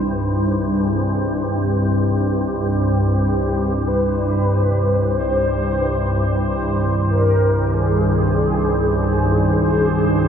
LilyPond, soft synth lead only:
\new Staff \with { instrumentName = "Soft synth lead" } { \time 4/4 \key c \minor \tempo 4 = 47 r8 aes'8 g'4 g'4 b'4 | c''4 r8 bes'8 aes'4 aes'4 | }